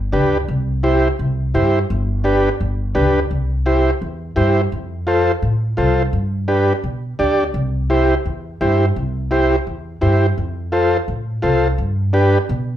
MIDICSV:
0, 0, Header, 1, 3, 480
1, 0, Start_track
1, 0, Key_signature, 0, "major"
1, 0, Tempo, 353149
1, 658, Time_signature, 4, 2, 24, 8
1, 17356, End_track
2, 0, Start_track
2, 0, Title_t, "Transistor combo organ"
2, 0, Program_c, 0, 18
2, 170, Note_on_c, 0, 62, 78
2, 178, Note_on_c, 0, 67, 73
2, 182, Note_on_c, 0, 71, 83
2, 510, Note_off_c, 0, 62, 0
2, 514, Note_off_c, 0, 67, 0
2, 516, Note_off_c, 0, 71, 0
2, 1132, Note_on_c, 0, 64, 81
2, 1137, Note_on_c, 0, 67, 79
2, 1139, Note_on_c, 0, 72, 93
2, 1471, Note_off_c, 0, 64, 0
2, 1473, Note_off_c, 0, 67, 0
2, 1474, Note_off_c, 0, 72, 0
2, 2097, Note_on_c, 0, 64, 82
2, 2103, Note_on_c, 0, 67, 69
2, 2106, Note_on_c, 0, 72, 82
2, 2433, Note_off_c, 0, 64, 0
2, 2436, Note_off_c, 0, 67, 0
2, 2437, Note_off_c, 0, 72, 0
2, 3044, Note_on_c, 0, 62, 78
2, 3052, Note_on_c, 0, 67, 77
2, 3059, Note_on_c, 0, 71, 97
2, 3386, Note_off_c, 0, 62, 0
2, 3390, Note_off_c, 0, 67, 0
2, 3393, Note_off_c, 0, 71, 0
2, 4006, Note_on_c, 0, 62, 80
2, 4010, Note_on_c, 0, 67, 62
2, 4013, Note_on_c, 0, 71, 91
2, 4347, Note_off_c, 0, 62, 0
2, 4349, Note_off_c, 0, 67, 0
2, 4350, Note_off_c, 0, 71, 0
2, 4972, Note_on_c, 0, 64, 79
2, 4976, Note_on_c, 0, 67, 73
2, 4982, Note_on_c, 0, 72, 88
2, 5310, Note_off_c, 0, 64, 0
2, 5312, Note_off_c, 0, 67, 0
2, 5315, Note_off_c, 0, 72, 0
2, 5926, Note_on_c, 0, 64, 72
2, 5932, Note_on_c, 0, 67, 68
2, 5941, Note_on_c, 0, 72, 89
2, 6267, Note_off_c, 0, 64, 0
2, 6270, Note_off_c, 0, 67, 0
2, 6275, Note_off_c, 0, 72, 0
2, 6888, Note_on_c, 0, 65, 86
2, 6895, Note_on_c, 0, 69, 79
2, 6901, Note_on_c, 0, 72, 96
2, 7228, Note_off_c, 0, 65, 0
2, 7232, Note_off_c, 0, 69, 0
2, 7235, Note_off_c, 0, 72, 0
2, 7844, Note_on_c, 0, 65, 75
2, 7851, Note_on_c, 0, 69, 69
2, 7856, Note_on_c, 0, 72, 80
2, 8187, Note_off_c, 0, 65, 0
2, 8190, Note_off_c, 0, 69, 0
2, 8193, Note_off_c, 0, 72, 0
2, 8807, Note_on_c, 0, 62, 89
2, 8810, Note_on_c, 0, 67, 74
2, 8812, Note_on_c, 0, 71, 92
2, 9149, Note_off_c, 0, 62, 0
2, 9150, Note_off_c, 0, 67, 0
2, 9151, Note_off_c, 0, 71, 0
2, 9771, Note_on_c, 0, 62, 74
2, 9777, Note_on_c, 0, 67, 66
2, 9780, Note_on_c, 0, 74, 87
2, 10111, Note_off_c, 0, 62, 0
2, 10114, Note_off_c, 0, 67, 0
2, 10115, Note_off_c, 0, 74, 0
2, 10735, Note_on_c, 0, 64, 84
2, 10738, Note_on_c, 0, 67, 77
2, 10745, Note_on_c, 0, 72, 97
2, 11073, Note_off_c, 0, 64, 0
2, 11075, Note_off_c, 0, 67, 0
2, 11078, Note_off_c, 0, 72, 0
2, 11701, Note_on_c, 0, 64, 73
2, 11703, Note_on_c, 0, 67, 69
2, 11712, Note_on_c, 0, 72, 82
2, 12036, Note_off_c, 0, 64, 0
2, 12037, Note_off_c, 0, 67, 0
2, 12042, Note_off_c, 0, 72, 0
2, 12653, Note_on_c, 0, 64, 80
2, 12660, Note_on_c, 0, 67, 78
2, 12666, Note_on_c, 0, 72, 93
2, 12992, Note_off_c, 0, 64, 0
2, 12996, Note_off_c, 0, 67, 0
2, 12999, Note_off_c, 0, 72, 0
2, 13609, Note_on_c, 0, 64, 72
2, 13614, Note_on_c, 0, 67, 69
2, 13617, Note_on_c, 0, 72, 83
2, 13951, Note_off_c, 0, 64, 0
2, 13953, Note_off_c, 0, 67, 0
2, 13955, Note_off_c, 0, 72, 0
2, 14572, Note_on_c, 0, 65, 88
2, 14577, Note_on_c, 0, 69, 79
2, 14584, Note_on_c, 0, 72, 96
2, 14912, Note_off_c, 0, 65, 0
2, 14914, Note_off_c, 0, 69, 0
2, 14918, Note_off_c, 0, 72, 0
2, 15526, Note_on_c, 0, 65, 81
2, 15534, Note_on_c, 0, 69, 71
2, 15538, Note_on_c, 0, 72, 86
2, 15869, Note_off_c, 0, 65, 0
2, 15873, Note_off_c, 0, 69, 0
2, 15875, Note_off_c, 0, 72, 0
2, 16490, Note_on_c, 0, 62, 84
2, 16496, Note_on_c, 0, 67, 77
2, 16499, Note_on_c, 0, 71, 104
2, 16831, Note_off_c, 0, 62, 0
2, 16834, Note_off_c, 0, 67, 0
2, 16835, Note_off_c, 0, 71, 0
2, 17356, End_track
3, 0, Start_track
3, 0, Title_t, "Upright bass"
3, 0, Program_c, 1, 32
3, 0, Note_on_c, 1, 31, 88
3, 175, Note_on_c, 1, 38, 93
3, 196, Note_off_c, 1, 31, 0
3, 560, Note_off_c, 1, 38, 0
3, 658, Note_on_c, 1, 36, 96
3, 1426, Note_off_c, 1, 36, 0
3, 1620, Note_on_c, 1, 36, 88
3, 2104, Note_on_c, 1, 43, 88
3, 2124, Note_off_c, 1, 36, 0
3, 2485, Note_off_c, 1, 43, 0
3, 2585, Note_on_c, 1, 31, 97
3, 3349, Note_off_c, 1, 31, 0
3, 3540, Note_on_c, 1, 31, 85
3, 4020, Note_on_c, 1, 38, 87
3, 4041, Note_off_c, 1, 31, 0
3, 4402, Note_off_c, 1, 38, 0
3, 4494, Note_on_c, 1, 36, 87
3, 5263, Note_off_c, 1, 36, 0
3, 5458, Note_on_c, 1, 40, 88
3, 5841, Note_off_c, 1, 40, 0
3, 5934, Note_on_c, 1, 43, 94
3, 6319, Note_off_c, 1, 43, 0
3, 6416, Note_on_c, 1, 41, 89
3, 7185, Note_off_c, 1, 41, 0
3, 7372, Note_on_c, 1, 45, 86
3, 7758, Note_off_c, 1, 45, 0
3, 7857, Note_on_c, 1, 36, 91
3, 8241, Note_off_c, 1, 36, 0
3, 8330, Note_on_c, 1, 43, 91
3, 9102, Note_off_c, 1, 43, 0
3, 9292, Note_on_c, 1, 47, 85
3, 9679, Note_off_c, 1, 47, 0
3, 9777, Note_on_c, 1, 38, 89
3, 10162, Note_off_c, 1, 38, 0
3, 10248, Note_on_c, 1, 36, 91
3, 11021, Note_off_c, 1, 36, 0
3, 11221, Note_on_c, 1, 40, 88
3, 11605, Note_off_c, 1, 40, 0
3, 11701, Note_on_c, 1, 43, 95
3, 12084, Note_off_c, 1, 43, 0
3, 12182, Note_on_c, 1, 36, 89
3, 12950, Note_off_c, 1, 36, 0
3, 13141, Note_on_c, 1, 40, 82
3, 13524, Note_off_c, 1, 40, 0
3, 13623, Note_on_c, 1, 43, 84
3, 14006, Note_off_c, 1, 43, 0
3, 14103, Note_on_c, 1, 41, 85
3, 14870, Note_off_c, 1, 41, 0
3, 15058, Note_on_c, 1, 45, 82
3, 15443, Note_off_c, 1, 45, 0
3, 15543, Note_on_c, 1, 36, 86
3, 15926, Note_off_c, 1, 36, 0
3, 16014, Note_on_c, 1, 43, 90
3, 16784, Note_off_c, 1, 43, 0
3, 16981, Note_on_c, 1, 47, 97
3, 17356, Note_off_c, 1, 47, 0
3, 17356, End_track
0, 0, End_of_file